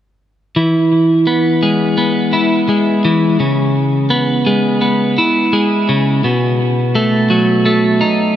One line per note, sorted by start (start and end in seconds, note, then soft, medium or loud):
0.56 2.34 E3 soft
1.27 1.97 B3 soft
1.63 2.68 G#3 soft
1.98 3.43 B3 soft
2.33 3.40 E4 soft
2.69 3.40 G#3 soft
3.05 3.39 E3 soft
3.40 5.17 C#3 soft
4.10 4.81 B3 medium
4.47 5.52 G#3 soft
4.81 6.95 B3 soft
5.18 6.24 E4 soft
5.53 6.24 G#3 soft
5.89 6.24 C#3 soft
6.24 8.02 B2 soft
6.95 7.64 A3 medium
7.30 8.35 F#3 soft
7.66 8.36 A3 soft
8.01 8.36 D#4 soft